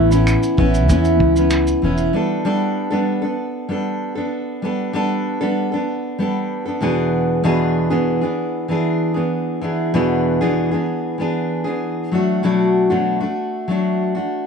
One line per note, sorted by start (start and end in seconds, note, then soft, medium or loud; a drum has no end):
0.00 0.34 A1 medium
0.00 0.11 A2 medium
0.00 0.11 E3 medium
0.00 0.12 B3 medium
0.00 0.11 C#4 medium
0.11 0.57 B3 soft
0.11 0.58 C#4 medium
0.11 0.58 E4 medium
0.11 shaker medium
0.27 finger snap medium
0.27 shaker medium
0.43 shaker soft
0.57 0.90 A1 medium
0.57 0.87 E3 medium
0.57 0.88 B3 medium
0.57 0.89 C#4 medium
0.57 0.91 E4 medium
0.57 kick medium
0.74 shaker soft
0.88 1.20 E2 medium
0.88 1.36 E3 medium
0.88 1.36 B3 medium
0.88 1.36 C#4 medium
0.88 1.34 E4 medium
0.88 kick medium
0.88 shaker medium
1.05 shaker soft
1.20 1.72 C#2 medium
1.20 kick medium
1.36 1.83 B3 soft
1.36 1.83 C#4 soft
1.36 1.83 E4 soft
1.36 shaker soft
1.50 finger snap medium
1.50 shaker medium
1.67 shaker soft
1.82 2.09 E1 medium
1.82 2.13 E3 medium
1.82 2.13 B3 soft
1.82 2.15 C#4 medium
1.82 2.15 E4 medium
1.98 shaker soft
2.13 2.44 G3 soft
2.13 2.44 B3 medium
2.13 2.45 D4 medium
2.13 2.46 A4 medium
2.45 2.92 G3 medium
2.45 2.91 B3 medium
2.45 2.91 D4 medium
2.45 2.89 A4 medium
2.90 3.24 G3 medium
2.90 3.23 B3 medium
2.90 3.22 D4 medium
2.90 3.21 A4 medium
3.22 3.68 B3 soft
3.22 3.69 D4 soft
3.22 3.69 A4 soft
3.69 4.16 G3 soft
3.69 4.17 B3 soft
3.69 4.16 D4 soft
3.69 4.14 A4 medium
4.15 4.63 B3 soft
4.15 4.64 D4 soft
4.15 4.63 A4 soft
4.62 4.92 G3 soft
4.62 4.93 B3 soft
4.62 4.94 D4 medium
4.62 4.95 A4 medium
4.93 5.41 G3 medium
4.93 5.41 B3 medium
4.93 5.40 D4 medium
4.93 5.40 A4 medium
5.41 5.74 G3 soft
5.41 5.73 B3 medium
5.41 5.72 D4 medium
5.41 5.71 A4 medium
5.72 6.19 B3 soft
5.72 6.20 D4 soft
5.72 6.19 A4 soft
6.19 6.66 G3 soft
6.19 6.67 B3 medium
6.19 6.66 D4 medium
6.19 6.64 A4 medium
6.66 6.81 B3 soft
6.66 6.82 D4 soft
6.66 6.82 A4 soft
6.81 7.42 E2 medium
6.81 7.43 B2 medium
6.81 7.43 E3 medium
6.81 7.45 B3 medium
6.81 7.44 D4 medium
6.81 7.45 G#4 medium
7.44 7.91 E2 medium
7.44 7.91 B2 medium
7.44 7.91 E3 medium
7.44 7.90 B3 medium
7.44 7.90 D4 medium
7.44 7.89 G#4 medium
7.90 8.23 E2 soft
7.90 8.23 B2 medium
7.90 8.23 E3 soft
7.90 8.22 B3 medium
7.90 8.22 D4 medium
7.90 8.20 G#4 medium
8.21 8.67 E3 soft
8.21 8.68 B3 soft
8.21 8.69 D4 soft
8.21 8.69 G#4 soft
8.68 9.16 E3 soft
8.68 9.16 B3 soft
8.68 9.15 D4 medium
8.68 9.13 G#4 medium
9.14 9.60 E3 soft
9.14 9.61 B3 soft
9.14 9.62 D4 soft
9.14 9.62 G#4 soft
9.61 9.94 E3 soft
9.61 9.94 B3 medium
9.61 9.94 D4 medium
9.61 9.95 G#4 medium
9.94 10.41 E2 medium
9.94 10.41 B2 medium
9.94 10.41 E3 medium
9.94 10.41 B3 medium
9.94 10.40 D4 medium
9.94 10.40 G#4 medium
10.41 10.74 E2 soft
10.41 10.73 B2 medium
10.41 10.73 E3 medium
10.41 10.73 B3 medium
10.41 10.72 D4 medium
10.41 10.70 G#4 medium
10.71 11.17 E3 soft
10.71 11.18 B3 soft
10.71 11.20 D4 soft
10.71 11.19 G#4 soft
11.18 11.66 E3 soft
11.18 11.66 B3 soft
11.18 11.65 D4 medium
11.18 11.63 G#4 medium
11.64 12.11 E3 soft
11.64 12.12 B3 soft
11.64 12.13 D4 soft
11.64 12.12 G#4 soft
12.12 12.42 F#3 medium
12.12 12.43 A3 medium
12.12 12.44 D4 medium
12.12 12.44 F#4 medium
12.43 12.91 B2 medium
12.43 12.91 F#3 medium
12.43 12.90 A3 medium
12.43 12.89 D4 medium
12.43 12.89 F#4 medium
12.90 13.23 B2 medium
12.90 13.23 F#3 medium
12.90 13.22 A3 medium
12.90 13.21 D4 medium
12.90 13.19 F#4 medium
13.21 13.68 A3 soft
13.21 13.69 D4 soft
13.21 13.68 F#4 soft
13.68 14.15 F#3 medium
13.68 14.16 A3 soft
13.68 14.15 D4 medium
13.68 14.14 F#4 medium
14.15 14.47 A3 soft
14.15 14.47 D4 soft
14.15 14.47 F#4 soft